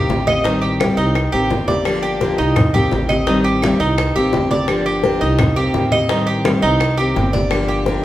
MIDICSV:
0, 0, Header, 1, 6, 480
1, 0, Start_track
1, 0, Tempo, 353357
1, 603, Time_signature, 4, 2, 24, 8
1, 10931, End_track
2, 0, Start_track
2, 0, Title_t, "Cuban tres"
2, 0, Program_c, 0, 25
2, 0, Note_on_c, 0, 67, 84
2, 350, Note_off_c, 0, 67, 0
2, 366, Note_on_c, 0, 75, 87
2, 598, Note_off_c, 0, 75, 0
2, 600, Note_on_c, 0, 63, 70
2, 834, Note_off_c, 0, 63, 0
2, 836, Note_on_c, 0, 67, 70
2, 1305, Note_off_c, 0, 67, 0
2, 1320, Note_on_c, 0, 63, 79
2, 1787, Note_off_c, 0, 63, 0
2, 1797, Note_on_c, 0, 67, 85
2, 2265, Note_off_c, 0, 67, 0
2, 2279, Note_on_c, 0, 74, 84
2, 2746, Note_off_c, 0, 74, 0
2, 2752, Note_on_c, 0, 67, 78
2, 3222, Note_off_c, 0, 67, 0
2, 3238, Note_on_c, 0, 63, 85
2, 3705, Note_off_c, 0, 63, 0
2, 3721, Note_on_c, 0, 67, 78
2, 4187, Note_off_c, 0, 67, 0
2, 4196, Note_on_c, 0, 75, 77
2, 4432, Note_off_c, 0, 75, 0
2, 4440, Note_on_c, 0, 63, 77
2, 4674, Note_off_c, 0, 63, 0
2, 4677, Note_on_c, 0, 67, 75
2, 5145, Note_off_c, 0, 67, 0
2, 5161, Note_on_c, 0, 63, 80
2, 5627, Note_off_c, 0, 63, 0
2, 5646, Note_on_c, 0, 67, 80
2, 6109, Note_off_c, 0, 67, 0
2, 6129, Note_on_c, 0, 74, 79
2, 6591, Note_off_c, 0, 74, 0
2, 6600, Note_on_c, 0, 67, 73
2, 7066, Note_off_c, 0, 67, 0
2, 7078, Note_on_c, 0, 63, 82
2, 7545, Note_off_c, 0, 63, 0
2, 7557, Note_on_c, 0, 67, 76
2, 8024, Note_off_c, 0, 67, 0
2, 8039, Note_on_c, 0, 75, 86
2, 8273, Note_off_c, 0, 75, 0
2, 8281, Note_on_c, 0, 63, 72
2, 8513, Note_on_c, 0, 67, 78
2, 8514, Note_off_c, 0, 63, 0
2, 8982, Note_off_c, 0, 67, 0
2, 8998, Note_on_c, 0, 63, 88
2, 9465, Note_off_c, 0, 63, 0
2, 9475, Note_on_c, 0, 67, 78
2, 9944, Note_off_c, 0, 67, 0
2, 9960, Note_on_c, 0, 74, 81
2, 10426, Note_off_c, 0, 74, 0
2, 10438, Note_on_c, 0, 67, 72
2, 10906, Note_off_c, 0, 67, 0
2, 10931, End_track
3, 0, Start_track
3, 0, Title_t, "Steel-string acoustic guitar"
3, 0, Program_c, 1, 25
3, 126, Note_on_c, 1, 51, 47
3, 132, Note_on_c, 1, 58, 55
3, 141, Note_on_c, 1, 60, 60
3, 142, Note_on_c, 1, 67, 54
3, 350, Note_off_c, 1, 67, 0
3, 355, Note_off_c, 1, 51, 0
3, 358, Note_off_c, 1, 58, 0
3, 363, Note_off_c, 1, 60, 0
3, 366, Note_on_c, 1, 67, 52
3, 380, Note_on_c, 1, 60, 46
3, 390, Note_on_c, 1, 58, 42
3, 595, Note_off_c, 1, 67, 0
3, 602, Note_off_c, 1, 60, 0
3, 607, Note_off_c, 1, 58, 0
3, 611, Note_on_c, 1, 51, 75
3, 621, Note_on_c, 1, 55, 75
3, 634, Note_on_c, 1, 60, 77
3, 1072, Note_off_c, 1, 51, 0
3, 1082, Note_off_c, 1, 55, 0
3, 1088, Note_on_c, 1, 51, 68
3, 1089, Note_off_c, 1, 60, 0
3, 1100, Note_on_c, 1, 55, 74
3, 1107, Note_on_c, 1, 60, 78
3, 1310, Note_off_c, 1, 60, 0
3, 1316, Note_off_c, 1, 51, 0
3, 1322, Note_off_c, 1, 55, 0
3, 1326, Note_on_c, 1, 60, 48
3, 1350, Note_on_c, 1, 55, 38
3, 1555, Note_off_c, 1, 60, 0
3, 1567, Note_off_c, 1, 55, 0
3, 1801, Note_on_c, 1, 67, 65
3, 1807, Note_on_c, 1, 60, 65
3, 1814, Note_on_c, 1, 58, 62
3, 1817, Note_on_c, 1, 51, 62
3, 2021, Note_off_c, 1, 51, 0
3, 2027, Note_off_c, 1, 58, 0
3, 2032, Note_off_c, 1, 67, 0
3, 2035, Note_off_c, 1, 60, 0
3, 2037, Note_on_c, 1, 51, 53
3, 2043, Note_on_c, 1, 58, 55
3, 2048, Note_on_c, 1, 60, 53
3, 2270, Note_off_c, 1, 51, 0
3, 2273, Note_off_c, 1, 58, 0
3, 2276, Note_off_c, 1, 60, 0
3, 2280, Note_on_c, 1, 67, 51
3, 2294, Note_on_c, 1, 60, 47
3, 2303, Note_on_c, 1, 58, 40
3, 2512, Note_off_c, 1, 67, 0
3, 2519, Note_off_c, 1, 60, 0
3, 2520, Note_on_c, 1, 50, 72
3, 2523, Note_off_c, 1, 58, 0
3, 2526, Note_on_c, 1, 53, 67
3, 2537, Note_on_c, 1, 62, 86
3, 2538, Note_on_c, 1, 58, 72
3, 2540, Note_on_c, 1, 67, 84
3, 2979, Note_off_c, 1, 50, 0
3, 2986, Note_off_c, 1, 58, 0
3, 2987, Note_off_c, 1, 53, 0
3, 2995, Note_on_c, 1, 50, 74
3, 2996, Note_off_c, 1, 62, 0
3, 2996, Note_off_c, 1, 67, 0
3, 3002, Note_on_c, 1, 58, 73
3, 3003, Note_on_c, 1, 53, 79
3, 3012, Note_on_c, 1, 62, 80
3, 3012, Note_on_c, 1, 67, 75
3, 3224, Note_off_c, 1, 67, 0
3, 3229, Note_off_c, 1, 50, 0
3, 3232, Note_off_c, 1, 58, 0
3, 3233, Note_off_c, 1, 53, 0
3, 3237, Note_off_c, 1, 62, 0
3, 3240, Note_on_c, 1, 67, 47
3, 3255, Note_on_c, 1, 62, 44
3, 3471, Note_off_c, 1, 67, 0
3, 3479, Note_off_c, 1, 62, 0
3, 3726, Note_on_c, 1, 67, 68
3, 3734, Note_on_c, 1, 60, 63
3, 3738, Note_on_c, 1, 58, 68
3, 3744, Note_on_c, 1, 51, 55
3, 3941, Note_off_c, 1, 51, 0
3, 3948, Note_off_c, 1, 58, 0
3, 3954, Note_off_c, 1, 67, 0
3, 3958, Note_off_c, 1, 60, 0
3, 3958, Note_on_c, 1, 51, 51
3, 3964, Note_on_c, 1, 58, 50
3, 3976, Note_on_c, 1, 60, 56
3, 3981, Note_on_c, 1, 67, 64
3, 4183, Note_off_c, 1, 67, 0
3, 4190, Note_off_c, 1, 51, 0
3, 4193, Note_off_c, 1, 58, 0
3, 4199, Note_off_c, 1, 60, 0
3, 4199, Note_on_c, 1, 67, 55
3, 4214, Note_on_c, 1, 60, 48
3, 4219, Note_on_c, 1, 58, 40
3, 4431, Note_off_c, 1, 67, 0
3, 4433, Note_on_c, 1, 51, 73
3, 4438, Note_off_c, 1, 60, 0
3, 4441, Note_off_c, 1, 58, 0
3, 4446, Note_on_c, 1, 55, 83
3, 4452, Note_on_c, 1, 60, 83
3, 4904, Note_off_c, 1, 51, 0
3, 4914, Note_off_c, 1, 55, 0
3, 4917, Note_off_c, 1, 60, 0
3, 4921, Note_on_c, 1, 51, 68
3, 4928, Note_on_c, 1, 55, 75
3, 4938, Note_on_c, 1, 60, 83
3, 5142, Note_off_c, 1, 60, 0
3, 5151, Note_off_c, 1, 51, 0
3, 5155, Note_off_c, 1, 55, 0
3, 5158, Note_on_c, 1, 60, 42
3, 5178, Note_on_c, 1, 55, 39
3, 5390, Note_off_c, 1, 60, 0
3, 5400, Note_off_c, 1, 55, 0
3, 5651, Note_on_c, 1, 67, 71
3, 5659, Note_on_c, 1, 60, 70
3, 5665, Note_on_c, 1, 58, 58
3, 5671, Note_on_c, 1, 51, 55
3, 5868, Note_off_c, 1, 51, 0
3, 5870, Note_off_c, 1, 58, 0
3, 5876, Note_off_c, 1, 67, 0
3, 5880, Note_off_c, 1, 60, 0
3, 5884, Note_on_c, 1, 51, 53
3, 5887, Note_on_c, 1, 58, 54
3, 5897, Note_on_c, 1, 60, 55
3, 5903, Note_on_c, 1, 67, 55
3, 6103, Note_off_c, 1, 67, 0
3, 6113, Note_off_c, 1, 51, 0
3, 6114, Note_off_c, 1, 58, 0
3, 6115, Note_off_c, 1, 60, 0
3, 6120, Note_on_c, 1, 67, 47
3, 6131, Note_on_c, 1, 60, 45
3, 6141, Note_on_c, 1, 58, 40
3, 6349, Note_off_c, 1, 58, 0
3, 6351, Note_off_c, 1, 67, 0
3, 6355, Note_on_c, 1, 50, 74
3, 6356, Note_off_c, 1, 60, 0
3, 6358, Note_on_c, 1, 53, 73
3, 6365, Note_on_c, 1, 58, 78
3, 6372, Note_on_c, 1, 62, 75
3, 6372, Note_on_c, 1, 67, 74
3, 6828, Note_off_c, 1, 50, 0
3, 6830, Note_off_c, 1, 53, 0
3, 6833, Note_off_c, 1, 58, 0
3, 6837, Note_off_c, 1, 62, 0
3, 6837, Note_off_c, 1, 67, 0
3, 6842, Note_on_c, 1, 50, 69
3, 6845, Note_on_c, 1, 53, 68
3, 6852, Note_on_c, 1, 58, 70
3, 6854, Note_on_c, 1, 62, 79
3, 6860, Note_on_c, 1, 67, 76
3, 7072, Note_off_c, 1, 50, 0
3, 7073, Note_off_c, 1, 53, 0
3, 7075, Note_off_c, 1, 67, 0
3, 7077, Note_off_c, 1, 58, 0
3, 7078, Note_off_c, 1, 62, 0
3, 7091, Note_on_c, 1, 67, 50
3, 7099, Note_on_c, 1, 62, 44
3, 7106, Note_on_c, 1, 58, 36
3, 7316, Note_off_c, 1, 58, 0
3, 7316, Note_off_c, 1, 67, 0
3, 7320, Note_off_c, 1, 62, 0
3, 7557, Note_on_c, 1, 67, 67
3, 7567, Note_on_c, 1, 60, 66
3, 7577, Note_on_c, 1, 58, 55
3, 7581, Note_on_c, 1, 51, 54
3, 7784, Note_off_c, 1, 51, 0
3, 7789, Note_off_c, 1, 67, 0
3, 7794, Note_off_c, 1, 60, 0
3, 7796, Note_off_c, 1, 58, 0
3, 7800, Note_on_c, 1, 51, 54
3, 7812, Note_on_c, 1, 58, 60
3, 7819, Note_on_c, 1, 60, 56
3, 7823, Note_on_c, 1, 67, 51
3, 8028, Note_off_c, 1, 67, 0
3, 8031, Note_off_c, 1, 51, 0
3, 8037, Note_off_c, 1, 58, 0
3, 8040, Note_off_c, 1, 60, 0
3, 8044, Note_on_c, 1, 67, 53
3, 8058, Note_on_c, 1, 60, 46
3, 8063, Note_on_c, 1, 58, 41
3, 8273, Note_off_c, 1, 67, 0
3, 8280, Note_off_c, 1, 60, 0
3, 8282, Note_off_c, 1, 58, 0
3, 8287, Note_on_c, 1, 51, 72
3, 8297, Note_on_c, 1, 55, 69
3, 8303, Note_on_c, 1, 60, 85
3, 8751, Note_off_c, 1, 51, 0
3, 8759, Note_off_c, 1, 55, 0
3, 8762, Note_off_c, 1, 60, 0
3, 8768, Note_on_c, 1, 51, 70
3, 8778, Note_on_c, 1, 55, 74
3, 8785, Note_on_c, 1, 60, 76
3, 8984, Note_off_c, 1, 60, 0
3, 8995, Note_off_c, 1, 51, 0
3, 9000, Note_off_c, 1, 55, 0
3, 9001, Note_on_c, 1, 60, 52
3, 9021, Note_on_c, 1, 55, 37
3, 9231, Note_off_c, 1, 60, 0
3, 9241, Note_off_c, 1, 55, 0
3, 9497, Note_on_c, 1, 67, 68
3, 9504, Note_on_c, 1, 60, 67
3, 9513, Note_on_c, 1, 58, 69
3, 9518, Note_on_c, 1, 51, 54
3, 9719, Note_off_c, 1, 51, 0
3, 9720, Note_off_c, 1, 67, 0
3, 9723, Note_off_c, 1, 60, 0
3, 9727, Note_off_c, 1, 58, 0
3, 9736, Note_on_c, 1, 51, 48
3, 9745, Note_on_c, 1, 58, 53
3, 9755, Note_on_c, 1, 60, 59
3, 9756, Note_on_c, 1, 67, 51
3, 9959, Note_off_c, 1, 51, 0
3, 9960, Note_off_c, 1, 67, 0
3, 9963, Note_off_c, 1, 58, 0
3, 9969, Note_off_c, 1, 60, 0
3, 9977, Note_on_c, 1, 67, 52
3, 9986, Note_on_c, 1, 60, 46
3, 9996, Note_on_c, 1, 58, 41
3, 10200, Note_off_c, 1, 67, 0
3, 10204, Note_off_c, 1, 60, 0
3, 10205, Note_off_c, 1, 58, 0
3, 10210, Note_on_c, 1, 50, 76
3, 10213, Note_on_c, 1, 53, 73
3, 10222, Note_on_c, 1, 58, 74
3, 10223, Note_on_c, 1, 62, 73
3, 10232, Note_on_c, 1, 67, 83
3, 10666, Note_off_c, 1, 50, 0
3, 10671, Note_off_c, 1, 53, 0
3, 10678, Note_off_c, 1, 58, 0
3, 10683, Note_off_c, 1, 62, 0
3, 10683, Note_on_c, 1, 50, 72
3, 10687, Note_off_c, 1, 67, 0
3, 10688, Note_on_c, 1, 53, 70
3, 10694, Note_on_c, 1, 58, 72
3, 10700, Note_on_c, 1, 62, 73
3, 10704, Note_on_c, 1, 67, 80
3, 10913, Note_off_c, 1, 50, 0
3, 10914, Note_off_c, 1, 67, 0
3, 10915, Note_off_c, 1, 53, 0
3, 10918, Note_off_c, 1, 58, 0
3, 10921, Note_off_c, 1, 62, 0
3, 10931, End_track
4, 0, Start_track
4, 0, Title_t, "Upright bass"
4, 0, Program_c, 2, 32
4, 116, Note_on_c, 2, 33, 79
4, 1241, Note_off_c, 2, 33, 0
4, 1315, Note_on_c, 2, 36, 88
4, 1765, Note_off_c, 2, 36, 0
4, 1808, Note_on_c, 2, 33, 70
4, 2028, Note_off_c, 2, 33, 0
4, 2049, Note_on_c, 2, 31, 84
4, 3167, Note_off_c, 2, 31, 0
4, 3249, Note_on_c, 2, 36, 94
4, 3915, Note_off_c, 2, 36, 0
4, 3964, Note_on_c, 2, 33, 82
4, 5084, Note_off_c, 2, 33, 0
4, 5164, Note_on_c, 2, 36, 92
4, 5609, Note_off_c, 2, 36, 0
4, 5643, Note_on_c, 2, 33, 69
4, 5865, Note_off_c, 2, 33, 0
4, 5892, Note_on_c, 2, 31, 88
4, 7008, Note_off_c, 2, 31, 0
4, 7088, Note_on_c, 2, 36, 93
4, 7754, Note_off_c, 2, 36, 0
4, 7803, Note_on_c, 2, 33, 82
4, 8923, Note_off_c, 2, 33, 0
4, 9003, Note_on_c, 2, 36, 87
4, 9672, Note_off_c, 2, 36, 0
4, 9724, Note_on_c, 2, 31, 82
4, 10845, Note_off_c, 2, 31, 0
4, 10931, End_track
5, 0, Start_track
5, 0, Title_t, "Muted steel-string acoustic guitar strokes"
5, 1570, Note_on_c, 9, 29, 54
5, 1706, Note_off_c, 9, 29, 0
5, 3482, Note_on_c, 9, 29, 53
5, 3618, Note_off_c, 9, 29, 0
5, 5409, Note_on_c, 9, 29, 57
5, 5544, Note_off_c, 9, 29, 0
5, 7332, Note_on_c, 9, 29, 55
5, 7468, Note_off_c, 9, 29, 0
5, 9255, Note_on_c, 9, 29, 52
5, 9391, Note_off_c, 9, 29, 0
5, 10931, End_track
6, 0, Start_track
6, 0, Title_t, "Drums"
6, 132, Note_on_c, 9, 60, 39
6, 132, Note_on_c, 9, 61, 98
6, 135, Note_on_c, 9, 63, 86
6, 268, Note_off_c, 9, 60, 0
6, 268, Note_off_c, 9, 61, 0
6, 271, Note_off_c, 9, 63, 0
6, 374, Note_on_c, 9, 60, 35
6, 374, Note_on_c, 9, 63, 86
6, 377, Note_on_c, 9, 75, 70
6, 510, Note_off_c, 9, 60, 0
6, 510, Note_off_c, 9, 63, 0
6, 513, Note_off_c, 9, 75, 0
6, 608, Note_on_c, 9, 63, 35
6, 616, Note_on_c, 9, 60, 68
6, 744, Note_off_c, 9, 63, 0
6, 752, Note_off_c, 9, 60, 0
6, 856, Note_on_c, 9, 63, 30
6, 992, Note_off_c, 9, 63, 0
6, 1089, Note_on_c, 9, 75, 67
6, 1095, Note_on_c, 9, 60, 65
6, 1096, Note_on_c, 9, 63, 94
6, 1225, Note_off_c, 9, 75, 0
6, 1231, Note_off_c, 9, 60, 0
6, 1232, Note_off_c, 9, 63, 0
6, 1334, Note_on_c, 9, 63, 33
6, 1335, Note_on_c, 9, 60, 33
6, 1470, Note_off_c, 9, 63, 0
6, 1471, Note_off_c, 9, 60, 0
6, 1563, Note_on_c, 9, 63, 32
6, 1567, Note_on_c, 9, 60, 62
6, 1574, Note_on_c, 9, 75, 65
6, 1699, Note_off_c, 9, 63, 0
6, 1703, Note_off_c, 9, 60, 0
6, 1710, Note_off_c, 9, 75, 0
6, 1806, Note_on_c, 9, 63, 37
6, 1813, Note_on_c, 9, 60, 32
6, 1942, Note_off_c, 9, 63, 0
6, 1949, Note_off_c, 9, 60, 0
6, 2043, Note_on_c, 9, 63, 78
6, 2049, Note_on_c, 9, 60, 38
6, 2049, Note_on_c, 9, 61, 91
6, 2179, Note_off_c, 9, 63, 0
6, 2184, Note_off_c, 9, 60, 0
6, 2184, Note_off_c, 9, 61, 0
6, 2280, Note_on_c, 9, 63, 92
6, 2286, Note_on_c, 9, 60, 38
6, 2416, Note_off_c, 9, 63, 0
6, 2422, Note_off_c, 9, 60, 0
6, 2518, Note_on_c, 9, 60, 67
6, 2523, Note_on_c, 9, 63, 34
6, 2525, Note_on_c, 9, 75, 68
6, 2654, Note_off_c, 9, 60, 0
6, 2659, Note_off_c, 9, 63, 0
6, 2661, Note_off_c, 9, 75, 0
6, 2770, Note_on_c, 9, 63, 32
6, 2906, Note_off_c, 9, 63, 0
6, 3003, Note_on_c, 9, 60, 65
6, 3005, Note_on_c, 9, 63, 64
6, 3138, Note_off_c, 9, 60, 0
6, 3141, Note_off_c, 9, 63, 0
6, 3246, Note_on_c, 9, 60, 35
6, 3260, Note_on_c, 9, 63, 34
6, 3382, Note_off_c, 9, 60, 0
6, 3396, Note_off_c, 9, 63, 0
6, 3478, Note_on_c, 9, 75, 63
6, 3483, Note_on_c, 9, 60, 67
6, 3487, Note_on_c, 9, 63, 35
6, 3487, Note_on_c, 9, 64, 94
6, 3613, Note_off_c, 9, 75, 0
6, 3619, Note_off_c, 9, 60, 0
6, 3623, Note_off_c, 9, 63, 0
6, 3623, Note_off_c, 9, 64, 0
6, 3719, Note_on_c, 9, 60, 32
6, 3732, Note_on_c, 9, 63, 34
6, 3732, Note_on_c, 9, 64, 68
6, 3854, Note_off_c, 9, 60, 0
6, 3868, Note_off_c, 9, 63, 0
6, 3868, Note_off_c, 9, 64, 0
6, 3960, Note_on_c, 9, 60, 38
6, 3960, Note_on_c, 9, 61, 86
6, 3973, Note_on_c, 9, 63, 75
6, 4096, Note_off_c, 9, 60, 0
6, 4096, Note_off_c, 9, 61, 0
6, 4109, Note_off_c, 9, 63, 0
6, 4201, Note_on_c, 9, 75, 67
6, 4203, Note_on_c, 9, 60, 39
6, 4215, Note_on_c, 9, 63, 84
6, 4337, Note_off_c, 9, 75, 0
6, 4338, Note_off_c, 9, 60, 0
6, 4351, Note_off_c, 9, 63, 0
6, 4443, Note_on_c, 9, 60, 72
6, 4467, Note_on_c, 9, 63, 35
6, 4579, Note_off_c, 9, 60, 0
6, 4603, Note_off_c, 9, 63, 0
6, 4712, Note_on_c, 9, 63, 34
6, 4848, Note_off_c, 9, 63, 0
6, 4922, Note_on_c, 9, 75, 62
6, 4929, Note_on_c, 9, 60, 61
6, 4939, Note_on_c, 9, 63, 93
6, 5058, Note_off_c, 9, 75, 0
6, 5065, Note_off_c, 9, 60, 0
6, 5075, Note_off_c, 9, 63, 0
6, 5165, Note_on_c, 9, 60, 34
6, 5179, Note_on_c, 9, 63, 36
6, 5301, Note_off_c, 9, 60, 0
6, 5315, Note_off_c, 9, 63, 0
6, 5405, Note_on_c, 9, 75, 67
6, 5410, Note_on_c, 9, 60, 72
6, 5418, Note_on_c, 9, 63, 35
6, 5541, Note_off_c, 9, 75, 0
6, 5546, Note_off_c, 9, 60, 0
6, 5554, Note_off_c, 9, 63, 0
6, 5646, Note_on_c, 9, 60, 36
6, 5655, Note_on_c, 9, 63, 37
6, 5781, Note_off_c, 9, 60, 0
6, 5790, Note_off_c, 9, 63, 0
6, 5879, Note_on_c, 9, 60, 35
6, 5879, Note_on_c, 9, 61, 91
6, 5897, Note_on_c, 9, 63, 83
6, 6015, Note_off_c, 9, 60, 0
6, 6015, Note_off_c, 9, 61, 0
6, 6032, Note_off_c, 9, 63, 0
6, 6123, Note_on_c, 9, 63, 87
6, 6125, Note_on_c, 9, 60, 34
6, 6259, Note_off_c, 9, 63, 0
6, 6261, Note_off_c, 9, 60, 0
6, 6357, Note_on_c, 9, 60, 65
6, 6367, Note_on_c, 9, 75, 63
6, 6368, Note_on_c, 9, 63, 36
6, 6493, Note_off_c, 9, 60, 0
6, 6503, Note_off_c, 9, 75, 0
6, 6504, Note_off_c, 9, 63, 0
6, 6605, Note_on_c, 9, 63, 35
6, 6741, Note_off_c, 9, 63, 0
6, 6840, Note_on_c, 9, 60, 66
6, 6843, Note_on_c, 9, 63, 60
6, 6976, Note_off_c, 9, 60, 0
6, 6978, Note_off_c, 9, 63, 0
6, 7078, Note_on_c, 9, 60, 38
6, 7085, Note_on_c, 9, 63, 31
6, 7214, Note_off_c, 9, 60, 0
6, 7220, Note_off_c, 9, 63, 0
6, 7317, Note_on_c, 9, 60, 65
6, 7323, Note_on_c, 9, 63, 32
6, 7323, Note_on_c, 9, 64, 90
6, 7324, Note_on_c, 9, 75, 63
6, 7453, Note_off_c, 9, 60, 0
6, 7459, Note_off_c, 9, 63, 0
6, 7459, Note_off_c, 9, 64, 0
6, 7460, Note_off_c, 9, 75, 0
6, 7555, Note_on_c, 9, 60, 32
6, 7563, Note_on_c, 9, 63, 34
6, 7691, Note_off_c, 9, 60, 0
6, 7699, Note_off_c, 9, 63, 0
6, 7799, Note_on_c, 9, 60, 36
6, 7799, Note_on_c, 9, 61, 89
6, 7799, Note_on_c, 9, 63, 79
6, 7934, Note_off_c, 9, 60, 0
6, 7934, Note_off_c, 9, 61, 0
6, 7935, Note_off_c, 9, 63, 0
6, 8036, Note_on_c, 9, 63, 77
6, 8041, Note_on_c, 9, 60, 38
6, 8044, Note_on_c, 9, 75, 67
6, 8172, Note_off_c, 9, 63, 0
6, 8177, Note_off_c, 9, 60, 0
6, 8180, Note_off_c, 9, 75, 0
6, 8277, Note_on_c, 9, 60, 76
6, 8287, Note_on_c, 9, 63, 36
6, 8413, Note_off_c, 9, 60, 0
6, 8422, Note_off_c, 9, 63, 0
6, 8526, Note_on_c, 9, 63, 34
6, 8662, Note_off_c, 9, 63, 0
6, 8761, Note_on_c, 9, 60, 64
6, 8762, Note_on_c, 9, 63, 95
6, 8772, Note_on_c, 9, 75, 66
6, 8897, Note_off_c, 9, 60, 0
6, 8898, Note_off_c, 9, 63, 0
6, 8908, Note_off_c, 9, 75, 0
6, 9008, Note_on_c, 9, 60, 33
6, 9144, Note_off_c, 9, 60, 0
6, 9241, Note_on_c, 9, 75, 69
6, 9248, Note_on_c, 9, 60, 65
6, 9251, Note_on_c, 9, 63, 34
6, 9376, Note_off_c, 9, 75, 0
6, 9383, Note_off_c, 9, 60, 0
6, 9386, Note_off_c, 9, 63, 0
6, 9489, Note_on_c, 9, 60, 32
6, 9502, Note_on_c, 9, 63, 33
6, 9625, Note_off_c, 9, 60, 0
6, 9638, Note_off_c, 9, 63, 0
6, 9730, Note_on_c, 9, 60, 39
6, 9730, Note_on_c, 9, 61, 95
6, 9737, Note_on_c, 9, 63, 75
6, 9866, Note_off_c, 9, 60, 0
6, 9866, Note_off_c, 9, 61, 0
6, 9873, Note_off_c, 9, 63, 0
6, 9972, Note_on_c, 9, 60, 32
6, 9973, Note_on_c, 9, 63, 95
6, 10107, Note_off_c, 9, 60, 0
6, 10109, Note_off_c, 9, 63, 0
6, 10198, Note_on_c, 9, 60, 75
6, 10207, Note_on_c, 9, 75, 66
6, 10216, Note_on_c, 9, 63, 35
6, 10334, Note_off_c, 9, 60, 0
6, 10342, Note_off_c, 9, 75, 0
6, 10352, Note_off_c, 9, 63, 0
6, 10448, Note_on_c, 9, 63, 35
6, 10583, Note_off_c, 9, 63, 0
6, 10679, Note_on_c, 9, 63, 59
6, 10681, Note_on_c, 9, 60, 67
6, 10815, Note_off_c, 9, 63, 0
6, 10817, Note_off_c, 9, 60, 0
6, 10931, End_track
0, 0, End_of_file